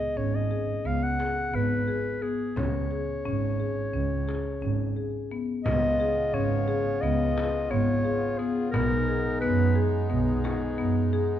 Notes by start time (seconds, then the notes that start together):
Already playing: G#4 D#5
0.17 G#1 C#4 C#5
0.35 D#5
0.51 G#4
0.85 C#2 B3 F5
1.03 F#5
1.19 G#4, frame drum
1.53 G#1 B3 B4
1.88 G#4, frame drum
2.22 B3 G#4
2.56 C#2 C#4 C#5, frame drum
2.91 G#4, frame drum
3.25 G#1 C#4, frame drum
3.60 G#4
3.93 C#2 C#4
4.28 G#4, frame drum
4.62 G#1 C#4, frame drum
4.96 G#4
5.31 B3
5.64 C#2 C#3 B3 F4 D#5, frame drum
6.00 G#4
6.33 G#1 C#4 C#5
6.68 G#4
7.01 C#2 B3 D#5
7.37 G#4, frame drum
7.70 G#1 B3 C#5
8.05 G#4, frame drum
8.38 B3 G#4
8.71 B1 G#3 B3 D#4 A#4, frame drum
9.08 G#4
9.40 F#2 B3 B4
9.75 G#4
10.09 B1 B3 G#4
10.44 G#4, frame drum
10.78 F#2 B3
11.13 G#4, frame drum